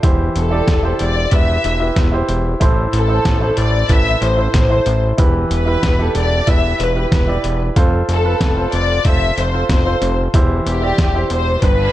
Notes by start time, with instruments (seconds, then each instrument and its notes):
0.03 analog synth bass E1, grand piano E3 E4 G4 C5, kick, closed hi-hat
0.36 analog synth bass E1, violin section A4, closed hi-hat
0.50 grand piano E4 G4 D5
0.67 analog synth bass E1, kick, snare, closed hi-hat
0.83 grand piano E4 G4 C5
0.99 analog synth bass E1, violin section D5, closed hi-hat
1.31 analog synth bass E1, grand piano E4 G4 B4, violin section E5, kick, closed hi-hat
1.64 analog synth bass E1, closed hi-hat
1.80 grand piano E4 G4 B4
1.96 analog synth bass E1, kick, snare, closed hi-hat
2.12 grand piano E4 G4 C5
2.29 analog synth bass E1, closed hi-hat
2.60 analog synth bass A1, grand piano A2 E4 A4 C5, kick, closed hi-hat
2.93 analog synth bass A1, violin section A4, closed hi-hat
3.08 grand piano E4 A4 C5
3.25 analog synth bass A1, kick, snare, closed hi-hat
3.40 grand piano E4 A4 C5
3.57 analog synth bass A1, violin section D5, closed hi-hat
3.88 analog synth bass A1, grand piano E4 A4 B4, violin section E5, kick, closed hi-hat
4.22 analog synth bass A1, violin section C5, closed hi-hat
4.37 grand piano E4 A4 C5
4.54 analog synth bass A1, violin section C5, kick, snare, closed hi-hat
4.70 grand piano E4 A4 C5
4.86 analog synth bass A1, closed hi-hat
5.17 analog synth bass E1, grand piano E3 E4 G4 B4, kick, closed hi-hat
5.51 analog synth bass E1, violin section B4, closed hi-hat
5.66 grand piano E4 G4 B4
5.83 analog synth bass E1, kick, snare, closed hi-hat
5.99 grand piano E4 G4 A4
6.15 analog synth bass E1, violin section D5, closed hi-hat
6.47 analog synth bass E1, grand piano E4 G4 B4, violin section E5, kick, closed hi-hat
6.80 analog synth bass E1, violin section B4, closed hi-hat
6.95 grand piano E4 G4 B4
7.12 analog synth bass E1, violin section B4, kick, snare, closed hi-hat
7.27 grand piano E4 G4 D5
7.44 analog synth bass E1, closed hi-hat
7.76 analog synth bass F1, grand piano F4 A4 C5, kick, closed hi-hat
8.09 analog synth bass F1, violin section A4, closed hi-hat
8.24 grand piano F4 A4 B4
8.41 analog synth bass F1, kick, snare, closed hi-hat
8.56 grand piano F4 A4 C5
8.72 analog synth bass F1, violin section D5, closed hi-hat
9.05 analog synth bass F1, grand piano F4 A4 C5, violin section E5, kick, closed hi-hat
9.38 analog synth bass F1, violin section C5, closed hi-hat
9.53 grand piano F4 A4 C5
9.69 analog synth bass F1, violin section C5, kick, snare, closed hi-hat
9.85 grand piano F4 A4 C5
10.02 analog synth bass F1, closed hi-hat
10.34 analog synth bass E1, grand piano E3 E4 G4 C5, kick, closed hi-hat
10.66 analog synth bass E1, violin section G4, closed hi-hat
10.82 grand piano E4 G4 D5
10.98 analog synth bass E1, kick, snare, closed hi-hat
11.14 grand piano E4 G4 C5
11.30 analog synth bass E1, violin section C5, closed hi-hat
11.62 analog synth bass G1, grand piano G2 D4 G4 B4, violin section B4, kick, closed hi-hat, reverse cymbal